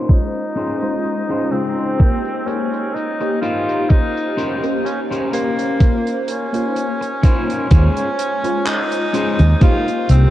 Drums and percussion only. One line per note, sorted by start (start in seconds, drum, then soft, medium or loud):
0.09 kick loud
0.09 closed hi-hat medium
0.34 closed hi-hat medium
0.56 closed hi-hat medium
0.82 closed hi-hat medium
1.05 closed hi-hat medium
1.30 closed hi-hat medium
1.52 closed hi-hat medium
1.78 closed hi-hat soft
2.00 kick loud
2.00 closed hi-hat medium
2.25 closed hi-hat medium
2.48 closed hi-hat medium
2.74 closed hi-hat medium
2.96 closed hi-hat medium
3.21 closed hi-hat soft
3.43 closed hi-hat loud
3.69 closed hi-hat medium
3.90 kick loud
3.90 closed hi-hat medium
4.17 closed hi-hat soft
4.38 closed hi-hat loud
4.64 closed hi-hat soft
4.86 closed hi-hat medium
5.12 closed hi-hat medium
5.33 closed hi-hat medium
5.59 closed hi-hat medium
5.80 kick loud
5.80 closed hi-hat medium
6.07 closed hi-hat medium
6.28 closed hi-hat medium
6.54 closed hi-hat medium
6.76 closed hi-hat medium
7.02 closed hi-hat medium
7.24 kick loud
7.24 closed hi-hat medium
7.50 closed hi-hat medium
7.71 kick loud
7.71 closed hi-hat medium
7.97 closed hi-hat medium
8.19 closed hi-hat loud
8.44 closed hi-hat medium
8.66 clap loud
8.66 closed hi-hat medium
8.92 closed hi-hat medium
9.14 closed hi-hat medium
9.39 closed hi-hat soft
9.61 kick loud
9.61 closed hi-hat medium
9.88 closed hi-hat medium
10.09 closed hi-hat loud